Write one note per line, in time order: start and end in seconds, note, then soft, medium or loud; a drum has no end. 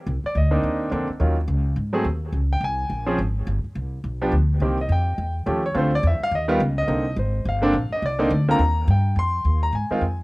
0.07 0.22 C2 medium
0.24 0.36 D5 medium
0.24 muted upright bass stroke soft
0.35 0.62 D2 medium
0.35 0.78 D#5 medium
0.51 0.89 A#3 medium
0.51 0.89 C4 medium
0.51 0.89 D4 medium
0.51 0.89 D#4 medium
0.63 0.91 D#2 medium
0.91 1.07 F2 medium
0.91 1.07 D3 medium
0.91 1.06 A#3 medium
0.91 1.07 C4 medium
0.91 1.07 D4 medium
1.09 muted upright bass stroke soft
1.20 1.47 D#2 medium
1.20 1.35 D#3 medium
1.20 1.35 F#3 medium
1.20 1.35 C#4 medium
1.20 1.36 F4 medium
1.48 1.75 C#2 medium
1.76 2.04 G#2 medium
1.93 2.03 F#3 medium
1.93 2.03 A3 medium
1.93 2.04 C4 medium
1.93 2.04 G#4 medium
2.04 2.32 D#2 medium
2.32 2.60 C#2 medium
2.53 2.63 G5 medium
2.61 2.89 C2 medium
2.61 3.05 G#5 medium
2.90 3.17 A#1 medium
3.06 3.17 F3 medium
3.06 3.17 C4 medium
3.06 3.18 C#4 medium
3.06 3.17 G#4 medium
3.18 3.46 G#1 medium
3.47 3.63 G1 medium
3.64 muted upright bass stroke soft
3.75 4.03 C2 medium
4.04 4.31 B1 medium
4.22 4.31 F3 medium
4.22 4.32 B3 medium
4.22 4.32 D4 medium
4.22 4.32 G4 medium
4.32 4.59 D2 medium
4.60 4.88 C2 medium
4.60 4.76 D#3 medium
4.60 4.76 A#3 medium
4.60 4.77 C4 medium
4.60 4.77 G4 medium
4.81 4.91 D#5 medium
4.89 5.17 F2 medium
4.89 5.33 G5 medium
5.18 5.45 E2 medium
5.46 5.74 D#2 medium
5.46 5.61 F3 medium
5.46 5.62 A3 medium
5.46 5.62 C#4 medium
5.46 5.62 G4 medium
5.66 5.76 C#5 medium
5.74 6.02 D2 medium
5.74 5.90 D3 medium
5.74 5.90 A3 medium
5.74 5.90 C4 medium
5.74 5.90 F4 medium
5.74 5.93 C5 medium
5.95 6.04 D5 medium
6.03 6.19 E2 medium
6.07 6.22 E5 medium
6.20 6.33 F5 loud
6.20 muted upright bass stroke soft
6.31 6.59 D#2 medium
6.31 6.44 D#5 medium
6.48 6.58 D#3 medium
6.48 6.59 G3 medium
6.48 6.59 B3 medium
6.48 6.59 F4 medium
6.60 6.87 C#2 medium
6.78 7.15 D#5 medium
6.87 7.16 C2 medium
6.87 7.03 D3 medium
6.87 7.03 A#3 medium
6.87 7.03 C4 medium
6.87 7.04 D#4 medium
7.16 7.44 G#1 medium
7.16 7.44 C5 medium
7.45 7.73 G1 medium
7.45 7.89 F5 medium
7.62 7.72 D3 medium
7.62 7.72 A#3 medium
7.62 7.73 C4 medium
7.62 7.73 D4 medium
7.73 7.89 A#1 medium
7.90 8.03 D#5 medium
7.90 muted upright bass stroke soft
8.02 8.30 C2 medium
8.02 8.46 D5 medium
8.19 8.29 D3 medium
8.19 8.29 A#3 medium
8.19 8.30 C4 medium
8.19 8.30 D#4 medium
8.30 8.58 D2 loud
8.48 8.58 D3 medium
8.48 8.58 A#3 medium
8.48 8.58 C4 medium
8.48 8.59 F4 medium
8.48 8.86 A#5 loud
8.59 8.86 D#2 medium
8.88 9.15 G2 loud
8.88 9.16 G5 medium
9.16 9.43 F2 medium
9.16 9.60 C6 loud
9.45 9.72 D#2 medium
9.63 9.73 A#5 medium
9.73 9.88 G#2 medium
9.73 10.16 G#5 medium
9.90 10.01 D#3 medium
9.90 10.01 G#3 medium
9.90 10.01 C4 medium
9.90 10.01 F4 medium
9.90 muted upright bass stroke soft
10.01 10.23 F2 medium